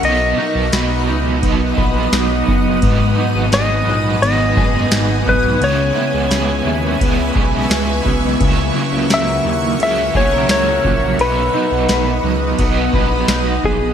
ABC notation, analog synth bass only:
X:1
M:4/4
L:1/16
Q:1/4=86
K:B
V:1 name="Analog synth bass" clef=bass
B,,,2 z B,,, B,,,2 C,,2 B,,,2 A,,,2 B,,,2 F,,,2 | G,,,2 z G,,, G,,,2 A,,,2 G,,,2 F,,,2 G,,,2 B,,,2 | C,,2 z C,, C,,2 D,,2 C,,2 B,,,2 C,,2 B,,,2 | C,,2 z C,, C,,2 D,,2 C,,2 B,,,2 C,,2 A,,,2 |
B,,,2 z B,,, B,,,2 C,,2 B,,,2 A,,,2 B,,,2 A,,,2 |]